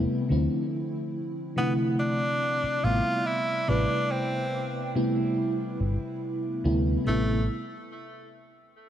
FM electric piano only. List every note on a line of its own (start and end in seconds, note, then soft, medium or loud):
0.00 0.32 C3 loud
0.00 0.32 G3 medium
0.00 0.30 A3 medium
0.00 0.33 B3 medium
0.00 0.32 E4 loud
0.29 1.52 D3 medium
0.29 1.52 F3 medium
0.29 1.52 A3 medium
0.29 1.53 C4 medium
0.29 1.53 E4 loud
1.56 2.80 C3 medium
1.56 2.79 D3 medium
1.56 2.79 F3 medium
1.56 2.79 A3 medium
1.56 2.80 E4 loud
2.84 3.63 C3 medium
2.84 3.64 G3 medium
2.84 3.64 A3 medium
2.84 3.64 B3 medium
2.84 3.64 E5 medium
3.67 4.90 C3 medium
3.67 4.90 G3 medium
3.67 4.91 A3 medium
3.67 4.91 E4 medium
3.67 4.91 B4 medium
4.95 5.14 C3 medium
4.95 5.14 G3 medium
4.95 5.15 A3 medium
4.95 5.15 B3 medium
4.95 5.15 E4 loud
6.64 7.02 C3 medium
6.64 7.02 G3 medium
6.64 7.02 A3 medium
6.64 7.02 B3 medium
6.64 7.02 E4 loud
7.04 7.37 C3 medium
7.04 7.38 G3 medium
7.04 7.38 A3 medium
7.04 7.39 B3 medium
7.09 7.39 E4 loud